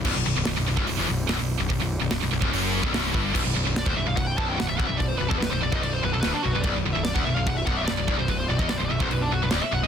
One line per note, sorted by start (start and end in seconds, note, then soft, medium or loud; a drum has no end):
0.05 0.15 B0 medium
0.05 0.15 B1 loud
0.05 kick loud
0.05 crash loud
0.15 0.25 B0 medium
0.15 0.24 B1 medium
0.26 0.35 B0 medium
0.26 0.36 B1 medium
0.36 0.45 B0 medium
0.36 0.46 B1 medium
0.45 0.55 B0 medium
0.45 0.56 B1 medium
0.45 snare loud
0.45 open hi-hat medium
0.57 0.66 B0 medium
0.57 0.66 B1 medium
0.68 0.76 B0 medium
0.68 0.77 B1 medium
0.77 0.87 C1 medium
0.77 0.87 C2 loud
0.77 kick loud
0.87 0.98 B0 medium
0.87 0.98 B1 medium
0.87 open hi-hat medium
0.98 1.08 E1 loud
0.98 1.08 E2 loud
1.09 1.27 B0 medium
1.09 1.25 B1 medium
1.28 1.38 B0 loud
1.28 1.38 B1 medium
1.28 snare loud
1.28 open hi-hat medium
1.39 1.58 B0 medium
1.39 1.55 B1 medium
1.59 1.69 B0 medium
1.59 1.70 B1 medium
1.70 1.80 B0 medium
1.70 1.80 B1 medium
1.70 kick loud
1.70 open hi-hat medium
1.81 2.00 B0 medium
1.81 1.97 B1 medium
2.01 2.10 B0 medium
2.01 2.10 B1 medium
2.10 2.20 B0 medium
2.10 2.22 B1 medium
2.10 snare loud
2.10 open hi-hat medium
2.21 2.31 B0 medium
2.21 2.32 B1 medium
2.31 2.41 B0 medium
2.31 2.43 B1 medium
2.42 2.52 C1 medium
2.42 2.52 C2 medium
2.42 kick loud
2.53 2.81 F#1 medium
2.53 2.83 F#2 loud
2.53 open hi-hat medium
2.83 2.93 B0 medium
2.83 2.93 B1 loud
2.83 kick loud
2.94 3.14 C1 medium
2.94 3.14 C2 medium
2.94 snare loud
2.94 open hi-hat medium
3.14 3.34 G1 medium
3.14 3.33 G2 loud
3.14 kick loud
3.34 3.45 B0 loud
3.34 3.43 B1 medium
3.34 kick loud
3.34 crash loud
3.34 crash medium
3.44 3.55 B0 medium
3.44 3.55 B1 medium
3.55 3.65 B0 medium
3.55 3.65 B1 medium
3.66 3.86 B0 medium
3.66 3.83 B1 medium
3.76 3.87 D5 medium
3.76 snare loud
3.76 crash medium
3.86 3.96 D1 medium
3.86 3.96 D2 medium
3.86 3.96 C5 medium
3.86 kick loud
3.96 4.06 B0 medium
3.96 4.05 B1 medium
3.96 4.07 E5 medium
4.06 4.17 B0 medium
4.06 4.14 B1 medium
4.06 4.18 F5 medium
4.16 4.36 B0 medium
4.16 4.33 B1 medium
4.16 4.27 F#5 medium
4.16 kick medium
4.16 crash medium
4.27 4.37 G5 medium
4.38 4.57 B0 medium
4.38 4.58 B1 loud
4.38 4.48 A5 loud
4.38 kick loud
4.49 4.59 G5 medium
4.59 4.69 B0 medium
4.59 4.68 B1 medium
4.59 4.68 F#5 medium
4.59 snare loud
4.59 crash medium
4.69 4.79 B0 medium
4.69 4.78 B1 medium
4.69 4.78 E5 medium
4.78 4.89 C1 loud
4.78 4.88 C2 medium
4.78 4.87 F#5 loud
4.78 kick loud
4.87 4.99 B0 medium
4.87 4.98 B1 medium
4.87 4.98 E5 medium
4.97 5.19 B0 medium
4.97 5.16 B1 medium
4.97 5.08 D5 medium
4.97 kick medium
5.02 crash medium
5.08 5.19 C5 medium
5.18 5.30 B0 medium
5.18 5.30 B1 medium
5.18 5.29 B4 medium
5.29 5.40 E1 medium
5.29 5.40 E2 loud
5.29 5.38 A4 medium
5.29 kick loud
5.38 5.51 B0 medium
5.38 5.51 B1 medium
5.38 5.49 B4 medium
5.42 snare loud
5.42 crash medium
5.51 5.61 B0 medium
5.51 5.62 B1 medium
5.51 5.61 C5 medium
5.62 5.72 B0 medium
5.62 5.72 B1 medium
5.62 5.72 D5 medium
5.72 5.82 B0 medium
5.72 5.82 B1 loud
5.72 5.83 D#5 medium
5.72 kick loud
5.83 6.02 B0 medium
5.83 5.99 B1 medium
5.83 5.93 D5 medium
5.83 crash medium
5.93 6.03 C5 medium
6.03 6.13 B0 medium
6.03 6.12 B1 medium
6.03 6.13 B4 medium
6.13 6.23 B0 medium
6.13 6.24 B1 medium
6.13 6.20 A4 medium
6.21 6.33 D1 loud
6.21 6.33 D2 loud
6.21 6.32 B4 loud
6.21 snare loud
6.21 crash medium
6.33 6.43 D4 soft
6.33 muted picked electric bass stroke soft
6.33 muted distorted electric guitar stroke medium
6.43 6.54 B0 medium
6.43 6.55 B1 medium
6.43 6.53 F#4 medium
6.53 6.64 B0 medium
6.53 6.64 B1 medium
6.53 6.63 B4 medium
6.60 6.74 D5 medium
6.60 kick loud
6.60 crash medium
6.65 6.74 B0 medium
6.65 6.74 B1 loud
6.75 6.85 B0 medium
6.75 6.84 B1 medium
6.85 6.95 B0 medium
6.85 6.94 B1 medium
6.93 7.15 B0 medium
6.93 7.12 B1 medium
6.93 7.04 E5 medium
7.04 7.15 D5 medium
7.04 snare loud
7.04 crash medium
7.14 7.25 D1 medium
7.14 7.25 D2 loud
7.14 7.25 F#5 medium
7.14 kick loud
7.24 7.36 B0 medium
7.24 7.35 B1 medium
7.24 7.34 E5 medium
7.34 7.47 B0 medium
7.34 7.46 B1 medium
7.34 7.45 F5 medium
7.47 7.66 B0 medium
7.47 7.63 B1 medium
7.47 7.57 F#5 loud
7.47 kick loud
7.47 crash medium
7.57 7.67 E5 loud
7.65 7.86 B0 loud
7.65 7.87 B1 medium
7.65 7.76 F#5 loud
7.65 kick loud
7.77 7.85 E5 medium
7.85 7.97 B0 medium
7.85 7.97 B1 medium
7.85 8.15 D5 medium
7.85 snare loud
7.85 crash medium
7.98 8.08 B0 medium
7.98 8.08 B1 medium
8.08 8.18 C1 loud
8.08 8.18 C2 medium
8.08 kick loud
8.18 8.28 B0 medium
8.18 8.28 B1 medium
8.18 8.28 C5 medium
8.28 8.48 B0 medium
8.28 8.45 B1 medium
8.28 8.38 B4 medium
8.28 kick medium
8.28 crash medium
8.39 8.49 C5 medium
8.48 8.58 B0 medium
8.48 8.60 B1 medium
8.48 8.59 D5 medium
8.59 8.69 E1 medium
8.59 8.69 E2 loud
8.59 8.69 D#5 medium
8.59 kick loud
8.69 8.79 B0 medium
8.69 8.79 B1 medium
8.69 8.77 D5 medium
8.69 snare loud
8.69 crash medium
8.78 8.90 B0 medium
8.78 8.89 B1 medium
8.78 8.84 C5 medium
8.84 8.91 D5 medium
8.90 9.00 B0 medium
8.90 9.00 B1 medium
8.90 9.01 E5 loud
9.00 9.10 B0 medium
9.00 9.10 B1 medium
9.00 9.13 C5 medium
9.00 kick loud
9.11 9.30 B0 medium
9.11 9.28 B1 medium
9.11 9.22 B4 medium
9.11 crash medium
9.21 9.31 D4 medium
9.32 9.41 B0 medium
9.32 9.41 B1 medium
9.32 9.42 F#4 medium
9.42 9.52 B0 medium
9.42 9.51 B1 medium
9.42 9.53 B4 medium
9.51 9.62 D1 loud
9.51 9.61 D2 medium
9.51 9.63 D5 medium
9.51 snare loud
9.51 crash medium
9.61 9.73 E5 medium
9.61 muted distorted electric guitar stroke soft
9.61 muted picked electric bass stroke soft
9.72 9.82 B0 medium
9.72 9.82 B1 medium
9.72 9.83 F#5 loud
9.83 9.87 B0 medium
9.83 9.87 B1 medium
9.83 9.87 D#5 loud